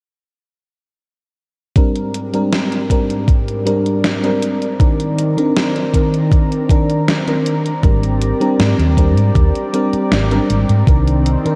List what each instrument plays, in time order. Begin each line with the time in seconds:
1.76 analog synth pad G#2 C4 G4 D5 A#5, fm electric piano G3 C4 D4 A#4, kick, closed hi-hat
1.96 closed hi-hat
2.14 closed hi-hat
2.33 fm electric piano G3 C4 D4 A#4, closed hi-hat
2.53 snare, closed hi-hat
2.72 closed hi-hat
2.90 fm electric piano G3 C4 D4 A#4, kick, closed hi-hat
3.10 closed hi-hat
3.28 kick, closed hi-hat
3.48 closed hi-hat
3.65 fm electric piano G3 C4 D4 A#4, closed hi-hat
3.86 closed hi-hat
4.04 snare, closed hi-hat
4.23 fm electric piano G3 C4 D4 A#4, closed hi-hat
4.42 closed hi-hat
4.62 closed hi-hat
4.80 fm electric piano D#3 C4 D4 A#4, analog synth pad D#3, kick, closed hi-hat
5.00 closed hi-hat
5.19 closed hi-hat
5.37 fm electric piano D#3 C4 D4 A#4, closed hi-hat
5.57 snare, closed hi-hat
5.76 closed hi-hat
5.93 fm electric piano D#3 C4 D4 A#4, kick, closed hi-hat
6.14 closed hi-hat
6.32 kick, closed hi-hat
6.52 closed hi-hat
6.69 fm electric piano D#3 C4 D4 A#4, kick, closed hi-hat
6.90 closed hi-hat
7.08 snare, closed hi-hat
7.27 fm electric piano D#3 C4 D4 A#4, closed hi-hat
7.46 closed hi-hat
7.66 closed hi-hat
7.83 fingered electric bass G#1, fm electric piano G3 C4 D4 A#4, analog synth pad G4 D5, kick, closed hi-hat
8.03 closed hi-hat
8.22 closed hi-hat
8.40 fm electric piano G3 C4 D4 A#4, closed hi-hat
8.60 fingered electric bass G#2, snare, closed hi-hat
8.78 fingered electric bass D#2, closed hi-hat
8.97 fm electric piano G3 C4 D4 A#4, kick, closed hi-hat
9.16 fingered electric bass G#2, closed hi-hat
9.35 fingered electric bass D#2, kick, closed hi-hat
9.55 closed hi-hat
9.73 fm electric piano G3 C4 D4 A#4, closed hi-hat
9.93 muted fingered electric bass stroke, closed hi-hat
10.11 fingered electric bass G#1, snare, closed hi-hat
10.31 fm electric piano G3 C4 D4 A#4, closed hi-hat
10.50 fingered electric bass G#1, closed hi-hat
10.69 fingered electric bass G#2, closed hi-hat
10.87 fingered electric bass C2, fm electric piano D#3 C4 D4 A#4, analog synth pad D#3 C4, kick, closed hi-hat
11.07 closed hi-hat
11.26 closed hi-hat
11.44 fm electric piano D#3 C4 D4 A#4, muted fingered electric bass stroke, closed hi-hat